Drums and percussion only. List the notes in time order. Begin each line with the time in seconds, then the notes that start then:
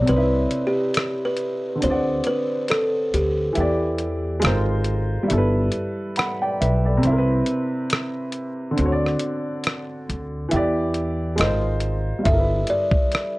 0.07 closed hi-hat
0.51 closed hi-hat
0.94 cross-stick, closed hi-hat
1.37 closed hi-hat
1.82 closed hi-hat
2.24 closed hi-hat
2.68 cross-stick, closed hi-hat
3.14 closed hi-hat
3.55 closed hi-hat
3.99 closed hi-hat
4.42 cross-stick, closed hi-hat
4.85 closed hi-hat
5.30 closed hi-hat
5.72 closed hi-hat
6.16 cross-stick, closed hi-hat
6.62 closed hi-hat
7.03 closed hi-hat
7.46 closed hi-hat
7.90 cross-stick, closed hi-hat
8.32 closed hi-hat
8.78 closed hi-hat
9.06 cross-stick
9.20 closed hi-hat
9.64 cross-stick, closed hi-hat
10.10 closed hi-hat
10.51 closed hi-hat
10.94 closed hi-hat
11.38 cross-stick, closed hi-hat
11.80 closed hi-hat
12.25 kick, closed hi-hat
12.67 closed hi-hat
12.92 kick
13.12 cross-stick, closed hi-hat